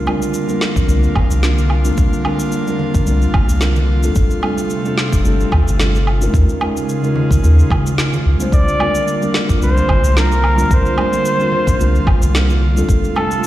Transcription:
Already playing: analog synth pad D3 A#3 F4
0.05 tine electric piano G3 C4 D4 F4 A#4, high conga, low woodblock
0.22 cabasa
0.34 cabasa
0.47 tine electric piano G3 C4 D4 F4 A#4, high conga, cabasa
0.61 snare
0.76 sub bass A#1, kick, cabasa
0.87 sub bass C2, tine electric piano G3 C4 D4 F4 A#4, high conga, cabasa
1.03 cabasa
1.15 sub bass G1, kick, low conga, low woodblock
1.31 sub bass C2, high conga, cabasa
1.42 tine electric piano G3 C4 D4 F4 A#4, snare, cabasa
1.58 cabasa
1.70 low woodblock
1.84 tine electric piano G3 C4 D4 F4 A#4, high conga, cabasa
1.97 sub bass C2, kick, cabasa
2.13 cabasa
2.24 tine electric piano G3 C4 D4 F4 A#4, high conga, low woodblock
2.39 cabasa
2.52 cabasa
2.67 tine electric piano G3 C4 D4 F4 A#4, high conga, cabasa
2.79 low conga
2.94 sub bass A#1, kick, cabasa
3.06 sub bass C2, tine electric piano G3 C4 D4 F4 A#4, high conga, cabasa
3.22 cabasa
3.34 sub bass G1, kick, low conga, low woodblock
3.49 sub bass C2, high conga, cabasa
3.59 tine electric piano G3 C4 D4 F4 A#4, snare, cabasa
3.76 low conga, cabasa
4.01 tine electric piano G3 C4 D4 F4 A4, high conga, cabasa
4.15 sub bass G1, analog synth pad C3 A3, kick, cabasa
4.30 cabasa
4.41 tine electric piano G3 C4 D4 F4 A4, high conga, low woodblock
4.58 cabasa
4.70 cabasa
4.84 tine electric piano G3 C4 D4 F4 A4, high conga, cabasa
4.98 snare
5.12 sub bass F1, kick, cabasa
5.24 sub bass G1, tine electric piano G3 C4 D4 F4 A4, high conga, cabasa
5.40 cabasa
5.51 sub bass D2, kick, low conga, low woodblock
5.67 sub bass G1, high conga, cabasa
5.78 tine electric piano G3 C4 D4 F4 A4, snare, cabasa
5.95 cabasa
6.07 low woodblock
6.21 tine electric piano G#3 C#4 D#4 F4 A#4, high conga, cabasa
6.32 sub bass D#2, analog synth pad C#3 G#3 F4, kick, cabasa
6.49 cabasa
6.60 tine electric piano G#3 C#4 D#4 F4 A#4, high conga, low woodblock
6.77 cabasa
6.89 cabasa
7.02 tine electric piano G#3 C#4 D#4 F4 A#4, high conga, cabasa
7.15 low conga
7.30 sub bass C#2, kick, cabasa
7.42 sub bass D#2, tine electric piano G#3 C#4 D#4 F4 A#4, high conga, cabasa
7.59 cabasa
7.70 sub bass A#1, kick, low conga, low woodblock
7.86 high conga, cabasa
7.97 tine electric piano G#3 C#4 D#4 F4 A#4, snare, cabasa
8.13 low conga, cabasa
8.26 sub bass C#2
8.39 tine electric piano G3 C4 D4 F4 C5, high conga, cabasa
8.52 sub bass C2, analog synth pad D3 A#3, flugelhorn D5, kick, cabasa
8.68 cabasa
8.79 tine electric piano G3 C4 D4 F4 A#4, high conga, low woodblock
8.95 cabasa
9.08 cabasa
9.21 tine electric piano G3 C4 D4 F4 A#4, high conga, cabasa
9.34 snare
9.49 sub bass A#1, kick, cabasa
9.60 sub bass C2, tine electric piano G3 C4 D4 F4 A#4, flugelhorn C5, high conga, cabasa
9.77 cabasa
9.88 sub bass G1, kick, low conga, low woodblock
10.04 sub bass C2, high conga, cabasa
10.15 tine electric piano G3 C4 D4 F4 A#4, flugelhorn A#4, snare, cabasa
10.32 cabasa
10.44 low woodblock
10.56 tine electric piano G3 C4 D4 F4 A#4, high conga, cabasa
10.71 sub bass C2, flugelhorn C5, kick, cabasa
10.86 cabasa
10.96 tine electric piano G3 C4 D4 F4 A#4, high conga, low woodblock
11.13 cabasa
11.25 cabasa
11.38 tine electric piano G3 C4 D4 F4 A#4, high conga, cabasa
11.52 low conga
11.67 sub bass A#1, kick, cabasa
11.79 sub bass C2, tine electric piano G3 C4 D4 F4 A#4, high conga, cabasa
11.95 cabasa
12.07 sub bass G1, kick, low conga, low woodblock
12.21 sub bass C2, high conga, cabasa
12.33 tine electric piano G3 C4 D4 F4 A#4, snare, cabasa
12.49 low conga, cabasa
12.75 tine electric piano G3 C4 D4 F4 A4, high conga, cabasa
12.88 sub bass G1, analog synth pad C3 A3, kick, cabasa
13.04 cabasa
13.15 tine electric piano G3 C4 D4 F4 A4, flugelhorn A4, high conga, low woodblock
13.31 cabasa
13.44 cabasa

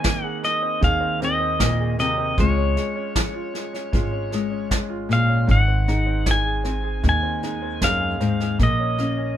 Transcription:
Already playing: upright piano D#3 C4 G#4, nylon-string guitar C4 D#4, pedal steel guitar G#5
0.04 nylon-string guitar D#3, upright piano A#3, kick, snare
0.23 upright piano G#4, pedal steel guitar F#5
0.43 upright piano A#3, pedal steel guitar D#5, snare
0.62 upright piano C4
0.81 upright bass D#2, nylon-string guitar G#2, upright piano D#3 G#4, pedal steel guitar F5, kick, snare
1.00 upright piano C4
1.20 upright piano A#3, nylon-string guitar C4, snare
1.25 pedal steel guitar D#5
1.40 upright piano C4
1.59 nylon-string guitar A#2, upright piano A#3, kick, snare
1.79 upright piano G#4
1.99 nylon-string guitar C3, upright piano A#3, pedal steel guitar D#5, snare
2.17 upright piano C4
2.38 upright bass C#2, nylon-string guitar C#3 G#3, upright piano G#3 F4, pedal steel guitar C#5, kick, snare
2.57 upright piano C#4
2.77 upright piano G#3, snare
2.96 upright piano C#4
3.15 nylon-string guitar F3, upright piano G#3, kick, snare
3.34 upright piano F4
3.54 upright piano G#3, snare
3.73 upright piano C#4, snare
3.92 upright bass G#1, nylon-string guitar G#2, upright piano G#3 F4, kick, snare
4.12 upright piano C#4
4.31 upright piano G#3, nylon-string guitar G#3, snare
4.50 upright piano C#4
4.70 upright piano G#3, kick, snare
4.89 upright piano F4
5.09 nylon-string guitar A#2, upright piano G#3, pedal steel guitar F5, snare
5.29 upright piano C#4
5.47 upright bass G#1, nylon-string guitar G#2, upright piano D#3, kick, snare
5.51 pedal steel guitar F#5
5.68 upright piano C4
5.88 upright piano G#3, nylon-string guitar D#4, snare
6.06 upright piano C4
6.26 nylon-string guitar D#3, upright piano G#3, kick, snare
6.31 pedal steel guitar G#5
6.45 upright piano G#4
6.64 upright piano C4, nylon-string guitar C4, snare
6.84 upright piano G#4
7.03 upright bass D#2, nylon-string guitar G#2, upright piano D#3, kick, snare
7.09 pedal steel guitar G#5
7.23 upright piano C4
7.43 upright piano G#3, nylon-string guitar D#4, snare
7.62 upright piano C4
7.81 nylon-string guitar F#2, upright piano G#3, pedal steel guitar F5, kick, snare
8.00 upright piano G#4
8.20 nylon-string guitar G#2, upright piano C4, snare
8.40 upright piano G#4, snare
8.59 upright bass A#1, nylon-string guitar A#2, upright piano A#3, kick, snare
8.63 pedal steel guitar D#5
8.79 upright piano C#4
8.98 upright piano A#3, nylon-string guitar C#4, snare
9.17 upright piano C#4

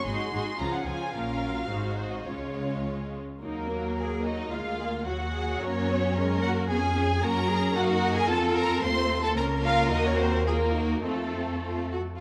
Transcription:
0.06 double bass section G#1, cello section G#2, viola section G#3 D#4, violin section F#4 G#4 C6
0.33 double bass section G#1, cello section G#2, viola section G#3 D#4, violin section F#4 G#4
0.58 double bass section C#2, cello section C#3, viola section F3 C#4, violin section F4 G#4 A#5
0.73 violin section F#5
0.86 double bass section C#2, cello section C#3, viola section F3 C#4, violin section F4 G#4 G#5
1.13 double bass section A#1, cello section A#2, viola section F3 C#4, violin section F4 A#4 F5
1.41 viola section F#3
1.68 double bass section G#1, cello section G#2, viola section G#3 D#4, violin section F#4 C5
1.98 violin section C5
2.12 violin section D#5
2.26 double bass section C#2, cello section C#3, viola section G#3 C#4, violin section F4 C#5
3.41 double bass section D#2, viola section F#3 D#4, violin section A#3 A#4
3.70 viola section A#3
3.98 cello section G#4
4.24 violin section D#4 D#5, cello section F#4
4.52 double bass section D2, viola section G#3, violin section F4 F5, cello section F4
4.79 viola section A#3, cello section G#4
5.06 double bass section D#2, viola section F#3, violin section F#4 F#5, cello section F#4
5.34 viola section F#3, cello section G#4
5.61 double bass section F#2, viola section A#3, violin section C#4 C#5, cello section A#4
5.89 viola section B3, cello section F#4
6.16 viola section G#3 C#4, cello section A#4
6.42 viola section A#3, violin section F#4 F#5
6.69 double bass section F2, viola section B3 C#4, violin section G#4 G#5, cello section G#4
6.97 viola section C#4
7.22 double bass section F#2, viola section A#3 C#4, cello section F#4, violin section A#4 A#5
7.49 viola section A#3, cello section G#4
7.75 double bass section F#2, viola section D#4, violin section F#4 F#5, cello section A#4
7.84 violin section F5
7.91 violin section F#5
8.14 violin section G#4 G#5
8.28 double bass section F2, viola section C4 F4, violin section A4 A5, cello section A4
8.54 violin section A#4 A#5
8.82 double bass section D#2, viola section A3 C4, cello section F4, violin section C5 C6
9.22 violin section A4 A5
9.36 double bass section C#2, viola section A#3 C#4, cello section A#4, violin section A#4 A#5
9.63 violin section F4 F5
9.91 double bass section D#2, violin section D#4 D#5, viola section F#4
10.05 violin section C#4 C#5
10.18 violin section C4 C5
10.46 violin section A#3 A#4, viola section F4, cello section G#4
10.73 viola section D#4, cello section F#4
11.03 double bass section F2, violin section A3 A4, viola section C4, cello section F4
11.62 cello section F4
11.92 cello section F#4

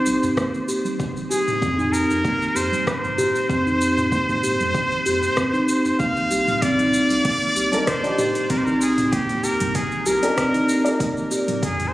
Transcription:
Already playing: muted trumpet C5
0.06 analog synth bass C2, shaker
0.23 udu, shaker
0.37 steel tongue drum A#3, kick, cross-stick, shaker
0.54 shaker
0.68 steel tongue drum G4, shaker
0.85 steel tongue drum G3, shaker
1.00 kick, shaker
1.17 shaker
1.31 steel tongue drum G4, muted trumpet G#4, shaker
1.48 mid tom, shaker
1.61 analog synth bass F2, steel tongue drum C4, kick, shaker
1.78 steel tongue drum D#4, mid tom, shaker
1.93 muted trumpet A#4, shaker
2.10 analog synth bass F2, shaker
2.24 steel tongue drum A#3, kick, shaker
2.42 shaker
2.55 analog synth bass F2, steel tongue drum G4, muted trumpet C5, shaker
2.72 steel tongue drum G3, udu, shaker
2.87 muted trumpet C5, kick, cross-stick, shaker
3.04 udu, shaker
3.18 steel tongue drum G4, mid tom, shaker
3.35 shaker
3.49 analog synth bass F2, steel tongue drum C4, kick, shaker
3.66 steel tongue drum D#4, shaker
3.81 shaker
3.98 mid tom, shaker
4.12 steel tongue drum A#3, kick, shaker
4.29 analog synth bass G#2, mid tom, shaker
4.43 steel tongue drum G4, shaker
4.60 analog synth bass F2, steel tongue drum G3, shaker
4.75 kick, shaker
4.92 shaker
5.06 analog synth bass F2, steel tongue drum G4, shaker
5.22 udu, shaker
5.37 steel tongue drum C4, kick, cross-stick, shaker
5.53 steel tongue drum D#4, shaker
5.69 shaker
5.85 udu, shaker
5.99 analog synth bass D#2, steel tongue drum A#3, muted trumpet F5, kick, shaker
6.16 shaker
6.31 analog synth bass C2, steel tongue drum G4, shaker
6.48 steel tongue drum G3, mid tom, shaker
6.62 analog synth bass C2, steel tongue drum C4, muted trumpet D5, kick, open hi-hat, udu, shaker
6.79 steel tongue drum D#4, mid tom, open hi-hat, shaker
6.94 shaker
7.10 analog synth bass C2, open hi-hat, shaker
7.25 steel tongue drum A#3, kick, open hi-hat, shaker
7.42 shaker
7.56 analog synth bass C2, steel tongue drum G4, shaker
7.72 steel tongue drum G3, felt piano D4 D#4 A#4, open hi-hat, shaker
7.87 muted trumpet C5, kick, cross-stick, open hi-hat, shaker
8.03 felt piano D4 D#4 G4, open hi-hat, shaker
8.18 steel tongue drum G4, mid tom, shaker
8.35 open hi-hat, shaker
8.50 analog synth bass C2, steel tongue drum C4, muted trumpet A#4, kick, open hi-hat, shaker
8.58 muted trumpet C5
8.65 steel tongue drum D#4, muted trumpet A#4, shaker
8.81 muted trumpet G#4, shaker
8.98 mid tom, open hi-hat, shaker
9.12 steel tongue drum A#3, muted trumpet G4, kick, open hi-hat, shaker
9.29 analog synth bass D#2, mid tom, open hi-hat, shaker
9.44 steel tongue drum G4, muted trumpet A#4, shaker
9.60 analog synth bass C2, steel tongue drum G3, open hi-hat, udu, shaker
9.75 muted trumpet G#4, kick, open hi-hat, shaker
9.92 shaker
10.06 analog synth bass C2, steel tongue drum G4, muted trumpet A#4, shaker
10.23 felt piano D4 D#4 A#4, open hi-hat, shaker
10.38 steel tongue drum C4, kick, cross-stick, open hi-hat, shaker
10.54 steel tongue drum D#4, open hi-hat, shaker
10.69 shaker
10.84 felt piano D#4 D5, open hi-hat, shaker
10.89 felt piano A#4
11.00 steel tongue drum A#3, kick, open hi-hat, shaker
11.17 shaker
11.31 steel tongue drum G4, shaker
11.48 steel tongue drum G3, mid tom, open hi-hat, shaker
11.63 analog synth bass F2, muted trumpet G#4, kick, open hi-hat, udu, shaker
11.80 mid tom, open hi-hat, shaker
11.88 muted trumpet C5

